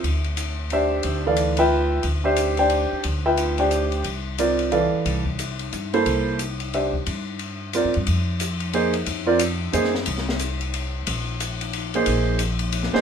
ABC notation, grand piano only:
X:1
M:3/4
L:1/8
Q:"Swing" 1/4=180
K:Dm
V:1 name="Grand piano"
z4 [DGce]2- | [DGce] [E,Adf]2 [F=Beg]3 | z [DGce]2 [DGcg]3 | z [F=Beg]2 [DGcg]3 |
z2 [CFBd]2 [E,Adf]2- | [E,Adf] z4 [B,EAc]- | [B,EAc]2 z2 [DGce] z | z4 [CFBd] z |
[K:Fm] z4 [B,EAc] z | z [CFB=d] z2 [B,EAc] z | z6 | z4 z [B,EAc]- |
[B,EAc]2 z3 [B,EAc] |]